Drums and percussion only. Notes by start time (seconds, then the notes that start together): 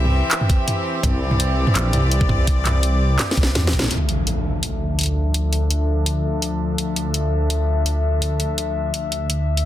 0.05 mid tom
0.31 clap, closed hi-hat
0.41 mid tom
0.50 kick, closed hi-hat
0.68 closed hi-hat, mid tom
1.03 kick, closed hi-hat, mid tom
1.31 mid tom
1.40 closed hi-hat
1.67 mid tom
1.75 clap, closed hi-hat
1.93 closed hi-hat, mid tom
2.12 closed hi-hat
2.21 kick
2.29 kick, mid tom
2.47 kick, closed hi-hat
2.66 clap, closed hi-hat, mid tom
2.83 closed hi-hat
3.19 snare, clap, closed hi-hat, mid tom
3.31 snare
3.37 kick, closed hi-hat
3.43 snare
3.55 snare, closed hi-hat, mid tom
3.67 snare
3.73 kick, closed hi-hat
3.79 snare
3.82 snare, mid tom
3.84 snare
3.86 snare
3.88 snare
3.90 snare, closed hi-hat
3.92 snare
3.95 snare
4.09 closed hi-hat
4.27 closed hi-hat
4.63 closed hi-hat
4.99 closed hi-hat
5.01 closed hi-hat
5.03 closed hi-hat
5.06 closed hi-hat
5.34 closed hi-hat
5.53 closed hi-hat
5.71 closed hi-hat
6.06 closed hi-hat
6.42 closed hi-hat
6.78 closed hi-hat
6.96 closed hi-hat
7.14 closed hi-hat
7.50 closed hi-hat
7.86 closed hi-hat
8.22 closed hi-hat
8.40 closed hi-hat
8.58 closed hi-hat
8.94 closed hi-hat
9.12 closed hi-hat
9.30 closed hi-hat
9.57 closed hi-hat